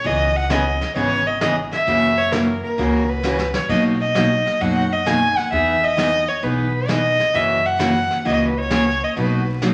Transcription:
0.04 C#2 C#3 E3 B3 C#4 G#4 D#5, brush sweep
0.36 F#5
0.50 C#3 E3 B3 C#4 G#4 D#5, snare, hi-hat pedal
0.81 snare
0.96 G#1 C#3 E3 B3 C#4 G#4 C#5, brush sweep
1.27 D#5
1.41 C#3 E3 B3 C#4 G#4 D#5, snare, hi-hat pedal
1.72 E5, snare
1.87 F#2 C#3 E3 A#3 C#4 F#4, brush sweep
2.18 C#5
2.32 C#3 E3 A#3 C#4 F#4 A#4, snare, hi-hat pedal
2.63 A#4
2.78 C#2 C#3 E3 A#3 C#4 F#4, brush sweep
3.10 B4
3.23 C#3 E3 A#3 C#4 F#4, snare, hi-hat pedal
3.39 snare
3.54 C#5, snare
3.69 B1 B2 F#3 A#3 D#4 F#4 D#5, brush sweep, kick, crash
4.01 D#5
4.14 B2 F#3 A#3 D#4 F#4, snare, hi-hat pedal
4.46 snare
4.60 F#2 B2 F#3 A#3 D#4 F#4 F#5, brush sweep
4.92 D#5
5.06 B2 F#3 A#3 D#4 F#4 G#5, snare, hi-hat pedal
5.37 F#5, snare
5.51 E2 E3 B3 D#4 G#4 E5, brush sweep
5.84 D#5
5.97 E3 B3 D#4 G#4, snare, hi-hat pedal
6.29 C#5
6.43 B1 E3 B3 D#4 G#4 B4, brush sweep
6.88 E3 B3 D#4 G#4 D#5, snare, hi-hat pedal
7.20 snare
7.33 F#2 C#3 E3 A#3 C#4 F#4 E5, brush sweep
7.66 F#5
7.79 C#3 E3 A#3 C#4 F#4, snare, hi-hat pedal
8.11 snare
8.25 C#2 C#3 E3 A#3 C#4 F#4 D#5, brush sweep
8.48 B4
8.58 C#5
8.70 C#3 E3 A#3 C#4 F#4, snare, hi-hat pedal
9.04 D#5
9.16 B1 B2 F#3 A#3 D#4 F#4 B4, brush sweep
9.62 B2 F#3 A#3 D#4 F#4, snare, hi-hat pedal

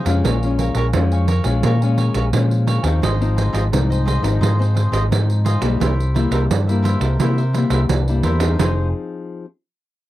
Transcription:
Already playing: C3
0.05 F2 G#3 C#4 F4 G#4 C5 F5, pandeiro
0.24 A#1 A#2 A#4 C#5 F5 G#5, pandeiro
0.43 G#3 C#4 F4, pandeiro
0.58 A#4 C#5 F5 G#5, pandeiro
0.75 A#1 A#4 C#5 F5 G#5, pandeiro
0.93 F2 F3 G#3 C#4 F4, pandeiro
1.12 C#5 F5 G#5, pandeiro
1.28 A#4 C#5 F5 G#5, pandeiro
1.44 A#1 G#3 C#4 F4 C#5 F5 G#5, pandeiro
1.63 A#2 A#4 C#5 F5 G#5, pandeiro
1.82 G#3 C#4 F4 C#5 F5 G#5, pandeiro
1.97 A#4 C#5 F5 G#5, pandeiro
2.14 A#1 A#4 C#5 F5 G#5, pandeiro
2.33 A#2 F3 G#3 C#4 F4, pandeiro
2.51 pandeiro
2.67 A#4 C#5 F5 G#5, pandeiro
2.83 D#2 F3 C4 D#4 C#5 F5 G#5, pandeiro
3.02 G#1 G#2 F4 G#4 C5 D#5, pandeiro
3.21 F3 C4 D#4, pandeiro
3.36 F4 G#4 C5 D#5, pandeiro
3.53 G#1 F4 G#4 C5 D#5, pandeiro
3.72 C2 G#2 F3 C4 D#4, pandeiro
3.90 G#4 C5 D#5, pandeiro
4.05 F4 G#4 C5 D#5, pandeiro
4.22 G#1 F3 C4 D#4 G#4 C5 D#5, pandeiro
4.41 G#2 F4 G#4 C5 D#5, pandeiro
4.59 F3 C4 D#4 G#4 C5 D#5, pandeiro
4.74 F4 G#4 C5 D#5, pandeiro
4.92 G#1 F4 G#4 C5 D#5, pandeiro
5.11 G#2 F3 C4 D#4, pandeiro
5.30 pandeiro
5.45 F4 G#4 C5 D#5, pandeiro
5.61 B1 G3 A#3 E4 G#4 C5 D#5, pandeiro
5.80 C2 C3 E4 A#4 C5 E5, pandeiro
6.00 pandeiro
6.14 G3 A#3 E4 A#4 C5 E5, pandeiro
6.31 C2 E4 A#4 C5 E5, pandeiro
6.50 G2, pandeiro
6.67 G3 A#3 E4 A#4 C5 E5, pandeiro
6.82 E4 A#4 C5 E5, pandeiro
7.00 C2 A#4 C5 E5, pandeiro
7.19 C3 G3 A#3 E4 A#4 C5 E5, pandeiro
7.38 A#4 C5 E5, pandeiro
7.53 G3 A#3 E4 A#4 C5 E5, pandeiro
7.70 C2 E4 A#4 C5 E5, pandeiro
7.89 C2 G2, pandeiro
8.08 G3 A#3 E4, pandeiro
8.23 E2 E4 A#4 C5 E5, pandeiro
8.40 C4 D#4 G#4 A#4 C5 E5, pandeiro
8.58 F1 F3 C4 D#4 G#4 C5 F5, pandeiro

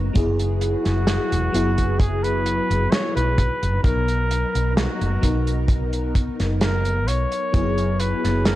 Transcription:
Already playing: B3 D#4 A#4 A#5
0.13 F#1 F#3 B3 E4 G#4 B4, kick, closed hi-hat
0.39 closed hi-hat
0.61 F#4, closed hi-hat
0.85 F#1, snare, closed hi-hat
1.07 snare, closed hi-hat
1.32 E1, closed hi-hat
1.52 F#1 F#3 B3 E4 G#4, closed hi-hat
1.78 kick, closed hi-hat
1.99 G#4, kick, closed hi-hat
2.23 B4, closed hi-hat
2.46 closed hi-hat
2.70 F#1, closed hi-hat
2.91 C#5, snare, closed hi-hat
3.16 B1 B4, closed hi-hat
3.38 B3 D#4 A#5, kick, closed hi-hat
3.63 F#1, closed hi-hat
3.83 B1 F#3 B3 D#4 A#4, kick, closed hi-hat
4.08 closed hi-hat
4.31 closed hi-hat
4.55 B1, closed hi-hat
4.76 F#4, snare, closed hi-hat
5.01 F#1, closed hi-hat
5.21 B1 F#3 B3 D#4 A#4, kick, closed hi-hat
5.47 closed hi-hat
5.68 kick, closed hi-hat
5.93 closed hi-hat
6.15 kick, closed hi-hat
6.40 F#1, snare, closed hi-hat
6.61 A#4, snare, closed hi-hat
6.85 closed hi-hat
7.07 B1 C#5, closed hi-hat
7.32 closed hi-hat
7.52 F#1 F#3 B3 E4 G#4, kick, closed hi-hat
7.78 closed hi-hat
8.00 B4, closed hi-hat
8.24 F#1, snare, closed hi-hat
8.45 A#4, snare, closed hi-hat

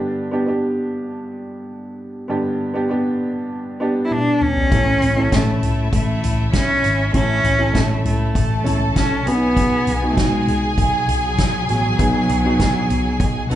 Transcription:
Already playing: G2 D3 B3 D4 G4
0.31 B3 D4 G4
0.46 B3 D4 G4
2.28 G2 D3 B3 D4 G4
2.74 B3 D4 G4
2.89 B3 D4 G4
3.80 B3 D4 G4
4.05 E4
4.11 D4, high tom
4.41 C#4, mid tom
4.57 floor tom
4.71 A1 A2 E3 C#4 E4 A4 E5, kick, closed hi-hat
5.02 A1, closed hi-hat, floor tom
5.16 C#4 E4 A4
5.32 A1 A3 C#4 E4 A4, kick, snare, closed hi-hat
5.63 A2, closed hi-hat, floor tom
5.92 A1 A3, kick, closed hi-hat
6.24 A1, closed hi-hat, floor tom
6.53 B1 C#4, kick, snare, closed hi-hat
6.84 G#1, snare, closed hi-hat
7.13 A1 A2 E3 C#4 E4 A4, kick, closed hi-hat
7.44 A1, closed hi-hat, floor tom
7.59 C#4 E4 A4
7.74 A1 A3 C#4 E4 A4, kick, snare, closed hi-hat
8.05 A2 A3, closed hi-hat, floor tom
8.35 A1 A4 A5, kick, closed hi-hat
8.64 A1 C#4 E4 A4, closed hi-hat, floor tom
8.96 B1 C#4, kick, snare, closed hi-hat
9.25 B1 B2 F#3 B3 C#4 F#4 G#4 G#5, snare, closed hi-hat
9.33 D#4
9.57 kick, closed hi-hat
9.87 B1, closed hi-hat, floor tom
10.02 B3 D#4 F#4
10.10 A3
10.17 B1 G#3 B3 D#4 F#4, kick, snare, closed hi-hat
10.47 B2, closed hi-hat, floor tom
10.78 B1 F#3, kick, closed hi-hat
11.07 B1, closed hi-hat, floor tom
11.38 B1, kick, snare, closed hi-hat
11.69 A1 B2 F#3, snare, closed hi-hat
11.98 B1 B3 D#4 G#4, kick, closed hi-hat
12.29 B1, closed hi-hat, floor tom
12.44 B3 D#4 F#4
12.59 B1 B3 D#4 F#4, kick, snare, closed hi-hat
12.90 B2, closed hi-hat, floor tom
13.20 B1, kick, closed hi-hat
13.50 B1 B3 D#4 F#4 A4 F#5, closed hi-hat, floor tom

